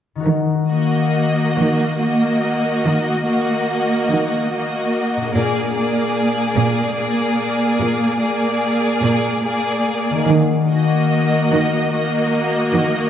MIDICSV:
0, 0, Header, 1, 6, 480
1, 0, Start_track
1, 0, Key_signature, -6, "minor"
1, 0, Tempo, 878477
1, 145, Time_signature, 12, 3, 24, 8
1, 1100, Tempo, 839161
1, 2540, Tempo, 820793
1, 7549, End_track
2, 0, Start_track
2, 0, Title_t, "Violin section"
2, 0, Program_c, 0, 48
2, 393, Note_on_c, 0, 75, 29
2, 1087, Note_off_c, 0, 75, 0
2, 1094, Note_on_c, 0, 75, 30
2, 1799, Note_off_c, 0, 75, 0
2, 1813, Note_on_c, 0, 75, 30
2, 2524, Note_off_c, 0, 75, 0
2, 2541, Note_on_c, 0, 75, 26
2, 3009, Note_off_c, 0, 75, 0
2, 3020, Note_on_c, 0, 74, 28
2, 3252, Note_off_c, 0, 74, 0
2, 3259, Note_on_c, 0, 74, 30
2, 3954, Note_off_c, 0, 74, 0
2, 3968, Note_on_c, 0, 74, 32
2, 4676, Note_off_c, 0, 74, 0
2, 4692, Note_on_c, 0, 74, 34
2, 5398, Note_off_c, 0, 74, 0
2, 5412, Note_on_c, 0, 74, 32
2, 5894, Note_off_c, 0, 74, 0
2, 6149, Note_on_c, 0, 75, 38
2, 6851, Note_off_c, 0, 75, 0
2, 6865, Note_on_c, 0, 75, 38
2, 7549, Note_off_c, 0, 75, 0
2, 7549, End_track
3, 0, Start_track
3, 0, Title_t, "Violin section"
3, 0, Program_c, 1, 48
3, 387, Note_on_c, 1, 66, 31
3, 1084, Note_off_c, 1, 66, 0
3, 1097, Note_on_c, 1, 66, 29
3, 1800, Note_off_c, 1, 66, 0
3, 1816, Note_on_c, 1, 66, 32
3, 2526, Note_off_c, 1, 66, 0
3, 2535, Note_on_c, 1, 66, 29
3, 3006, Note_off_c, 1, 66, 0
3, 3013, Note_on_c, 1, 68, 30
3, 3248, Note_off_c, 1, 68, 0
3, 3256, Note_on_c, 1, 68, 30
3, 3952, Note_off_c, 1, 68, 0
3, 3965, Note_on_c, 1, 68, 35
3, 4674, Note_off_c, 1, 68, 0
3, 4684, Note_on_c, 1, 68, 36
3, 5393, Note_off_c, 1, 68, 0
3, 5410, Note_on_c, 1, 68, 31
3, 5893, Note_off_c, 1, 68, 0
3, 6146, Note_on_c, 1, 66, 38
3, 6850, Note_off_c, 1, 66, 0
3, 6865, Note_on_c, 1, 66, 36
3, 7549, Note_off_c, 1, 66, 0
3, 7549, End_track
4, 0, Start_track
4, 0, Title_t, "Harp"
4, 0, Program_c, 2, 46
4, 84, Note_on_c, 2, 51, 27
4, 96, Note_on_c, 2, 63, 23
4, 108, Note_on_c, 2, 66, 25
4, 120, Note_on_c, 2, 70, 24
4, 2267, Note_off_c, 2, 51, 0
4, 2280, Note_off_c, 2, 63, 0
4, 2292, Note_off_c, 2, 66, 0
4, 2304, Note_off_c, 2, 70, 0
4, 2912, Note_on_c, 2, 46, 30
4, 2939, Note_on_c, 2, 62, 25
4, 2967, Note_on_c, 2, 68, 24
4, 2994, Note_on_c, 2, 70, 25
4, 5193, Note_off_c, 2, 46, 0
4, 5220, Note_off_c, 2, 62, 0
4, 5247, Note_off_c, 2, 68, 0
4, 5275, Note_off_c, 2, 70, 0
4, 5798, Note_on_c, 2, 51, 34
4, 5824, Note_on_c, 2, 63, 30
4, 5851, Note_on_c, 2, 66, 32
4, 5878, Note_on_c, 2, 70, 30
4, 7549, Note_off_c, 2, 51, 0
4, 7549, Note_off_c, 2, 63, 0
4, 7549, Note_off_c, 2, 66, 0
4, 7549, Note_off_c, 2, 70, 0
4, 7549, End_track
5, 0, Start_track
5, 0, Title_t, "Viola section"
5, 0, Program_c, 3, 48
5, 382, Note_on_c, 3, 58, 25
5, 1081, Note_off_c, 3, 58, 0
5, 1096, Note_on_c, 3, 58, 32
5, 1800, Note_off_c, 3, 58, 0
5, 1811, Note_on_c, 3, 58, 29
5, 2523, Note_off_c, 3, 58, 0
5, 2539, Note_on_c, 3, 58, 27
5, 3006, Note_off_c, 3, 58, 0
5, 3013, Note_on_c, 3, 58, 30
5, 3247, Note_off_c, 3, 58, 0
5, 3254, Note_on_c, 3, 58, 29
5, 3951, Note_off_c, 3, 58, 0
5, 3960, Note_on_c, 3, 58, 33
5, 4671, Note_off_c, 3, 58, 0
5, 4685, Note_on_c, 3, 58, 33
5, 5394, Note_off_c, 3, 58, 0
5, 5411, Note_on_c, 3, 58, 28
5, 5893, Note_off_c, 3, 58, 0
5, 6145, Note_on_c, 3, 58, 32
5, 6850, Note_off_c, 3, 58, 0
5, 6866, Note_on_c, 3, 58, 39
5, 7549, Note_off_c, 3, 58, 0
5, 7549, End_track
6, 0, Start_track
6, 0, Title_t, "Cello section"
6, 0, Program_c, 4, 48
6, 142, Note_on_c, 4, 51, 37
6, 772, Note_off_c, 4, 51, 0
6, 863, Note_on_c, 4, 51, 37
6, 1483, Note_off_c, 4, 51, 0
6, 1578, Note_on_c, 4, 51, 39
6, 2205, Note_off_c, 4, 51, 0
6, 2301, Note_on_c, 4, 51, 36
6, 2922, Note_off_c, 4, 51, 0
6, 3018, Note_on_c, 4, 46, 36
6, 3633, Note_off_c, 4, 46, 0
6, 3728, Note_on_c, 4, 46, 42
6, 4356, Note_off_c, 4, 46, 0
6, 4452, Note_on_c, 4, 46, 38
6, 5072, Note_off_c, 4, 46, 0
6, 5168, Note_on_c, 4, 46, 41
6, 5806, Note_off_c, 4, 46, 0
6, 5903, Note_on_c, 4, 51, 47
6, 6530, Note_off_c, 4, 51, 0
6, 6628, Note_on_c, 4, 51, 46
6, 7244, Note_off_c, 4, 51, 0
6, 7340, Note_on_c, 4, 51, 47
6, 7549, Note_off_c, 4, 51, 0
6, 7549, End_track
0, 0, End_of_file